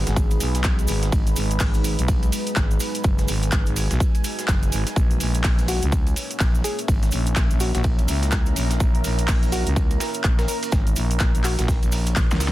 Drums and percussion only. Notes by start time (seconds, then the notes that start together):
0.07 snare, closed hi-hat, cabasa
0.16 kick, ride, cabasa
0.31 closed hi-hat, ride, cabasa
0.40 open hi-hat, ride, cabasa
0.55 snare, closed hi-hat, cabasa
0.64 kick, snare, clap, ride, cabasa
0.79 closed hi-hat, cabasa
0.87 open hi-hat, ride, cabasa
1.03 snare, closed hi-hat, cabasa
1.12 kick, ride, cabasa
1.27 closed hi-hat, cabasa
1.36 open hi-hat, ride, cabasa
1.51 closed hi-hat, cabasa
1.60 kick, snare, clap, open hi-hat, cabasa
1.74 closed hi-hat, ride, cabasa
1.84 open hi-hat, ride, cabasa
1.99 closed hi-hat, cabasa
2.08 kick, ride, cabasa
2.23 closed hi-hat, ride, cabasa
2.32 open hi-hat, ride, cabasa
2.47 closed hi-hat, cabasa
2.56 kick, snare, clap, ride, cabasa
2.71 closed hi-hat, cabasa
2.80 open hi-hat, ride, cabasa
2.95 closed hi-hat, cabasa
3.04 kick, ride, cabasa
3.18 snare, closed hi-hat, cabasa
3.28 open hi-hat, ride, cabasa
3.43 closed hi-hat, cabasa
3.52 kick, snare, clap, ride, cabasa
3.66 closed hi-hat, cabasa
3.76 open hi-hat, ride, cabasa
3.91 snare, closed hi-hat, cabasa
4.00 kick, ride, cabasa
4.15 closed hi-hat, ride, cabasa
4.24 open hi-hat, ride, cabasa
4.39 snare, closed hi-hat, cabasa
4.48 kick, snare, clap, ride, cabasa
4.63 closed hi-hat, cabasa
4.72 open hi-hat, ride, cabasa
4.87 snare, closed hi-hat, cabasa
4.96 kick, ride, cabasa
5.11 closed hi-hat, cabasa
5.20 open hi-hat, ride, cabasa
5.34 closed hi-hat, cabasa
5.44 kick, snare, clap, open hi-hat, cabasa
5.58 closed hi-hat, ride, cabasa
5.68 open hi-hat, ride, cabasa
5.82 closed hi-hat, cabasa
5.92 kick, ride, cabasa
6.07 closed hi-hat, ride, cabasa
6.16 open hi-hat, ride, cabasa
6.31 closed hi-hat, cabasa
6.40 kick, snare, clap, ride, cabasa
6.55 closed hi-hat, cabasa
6.64 open hi-hat, ride, cabasa
6.79 closed hi-hat, cabasa
6.88 kick, ride, cabasa
7.03 snare, closed hi-hat, cabasa
7.11 open hi-hat, ride, cabasa
7.26 closed hi-hat, cabasa
7.36 kick, snare, clap, ride, cabasa
7.51 closed hi-hat, cabasa
7.60 open hi-hat, ride, cabasa
7.75 snare, closed hi-hat, cabasa
7.84 kick, ride, cabasa
7.99 closed hi-hat, ride, cabasa
8.08 open hi-hat, ride, cabasa
8.22 snare, closed hi-hat, cabasa
8.31 kick, snare, clap, ride, cabasa
8.46 closed hi-hat, cabasa
8.56 open hi-hat, ride, cabasa
8.71 snare, closed hi-hat, cabasa
8.80 kick, ride, cabasa
8.95 closed hi-hat, cabasa
9.04 open hi-hat, ride, cabasa
9.18 closed hi-hat, cabasa
9.28 kick, snare, clap, open hi-hat, cabasa
9.43 closed hi-hat, ride, cabasa
9.52 open hi-hat, ride, cabasa
9.66 closed hi-hat, cabasa
9.76 kick, ride, cabasa
9.91 closed hi-hat, ride, cabasa
10.00 snare, open hi-hat, ride, cabasa
10.14 closed hi-hat, cabasa
10.24 kick, clap, ride, cabasa
10.39 snare, closed hi-hat, ride, cabasa
10.48 open hi-hat, cabasa
10.63 closed hi-hat, ride, cabasa
10.72 kick, snare, ride, cabasa
10.87 closed hi-hat, cabasa
10.96 open hi-hat, ride, cabasa
11.11 closed hi-hat, cabasa
11.20 kick, snare, clap, ride, cabasa
11.35 closed hi-hat, cabasa
11.44 clap, open hi-hat, ride, cabasa
11.59 snare, closed hi-hat, cabasa
11.68 kick, snare, open hi-hat, cabasa
11.83 closed hi-hat, ride, cabasa
11.92 open hi-hat, ride, cabasa
12.06 closed hi-hat, ride, cabasa
12.16 kick, snare, clap, ride, cabasa
12.31 snare, closed hi-hat, cabasa
12.40 snare, open hi-hat, ride, cabasa
12.48 snare